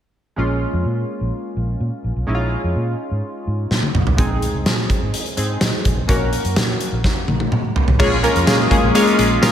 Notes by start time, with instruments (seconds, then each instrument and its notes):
0.36 fingered electric bass A#1, synth keys G#3 A#3 C#4 F4
0.73 fingered electric bass F2
0.85 fingered electric bass A#2
1.21 fingered electric bass A#1
1.56 fingered electric bass A#1
1.80 fingered electric bass A#2
2.04 fingered electric bass A#1
2.16 fingered electric bass B1
2.27 fingered electric bass A#1, synth keys G#3 C#4 D#4 E4
2.35 synth keys F4
2.64 fingered electric bass F2
2.76 fingered electric bass A#2
3.11 fingered electric bass G#2
3.47 fingered electric bass G#2
3.71 fingered electric bass A#2, snare
3.83 high tom
3.95 fingered electric bass A#1, mid tom
4.07 fingered electric bass B1, floor tom
4.17 fingered electric bass A#1, synth keys G#3 C4 D#4 G#4, kick, closed hi-hat
4.42 closed hi-hat
4.54 fingered electric bass C2
4.66 fingered electric bass A#2, snare, closed hi-hat
4.90 kick, closed hi-hat
5.02 fingered electric bass G#2
5.14 closed hi-hat
5.26 closed hi-hat
5.37 fingered electric bass G#2, synth keys G#3 C4 D#4 G#4, closed hi-hat
5.61 fingered electric bass A#2, snare, closed hi-hat
5.85 fingered electric bass A#1, kick, closed hi-hat
5.97 fingered electric bass B1
6.08 fingered electric bass A#1, synth keys A#3 C#4 F#4 A#4, kick, closed hi-hat
6.33 closed hi-hat
6.45 fingered electric bass F#2, closed hi-hat
6.56 fingered electric bass A#2, snare, closed hi-hat
6.80 closed hi-hat
6.92 fingered electric bass A#1
7.04 kick, snare
7.28 fingered electric bass A#1, high tom
7.40 high tom
7.52 fingered electric bass A#2, mid tom
7.76 fingered electric bass C#2, floor tom
7.88 fingered electric bass B1, floor tom
7.99 fingered electric bass A#1, synth keys G#3 A#3 C#4 F4 G#4, kick, crash
8.23 synth keys G#3 A#3 C#4 F4 A#4, closed hi-hat
8.35 fingered electric bass F2, closed hi-hat
8.47 fingered electric bass A#2, synth keys G#3 A#3 C#4 F4 G#4, snare, closed hi-hat, tambourine
8.70 synth keys G#3 A#3 C#4 F4 G#4, kick, closed hi-hat
8.83 fingered electric bass A#1
8.95 synth keys G#3 A#3 C#4 F4 G#4, closed hi-hat
9.07 closed hi-hat
9.18 fingered electric bass A#1, synth keys G#3 A#3 C#4 F4 G#4, closed hi-hat
9.42 fingered electric bass A#2, synth keys G#3 A#3 C#4 F4 A#4, snare, closed hi-hat, tambourine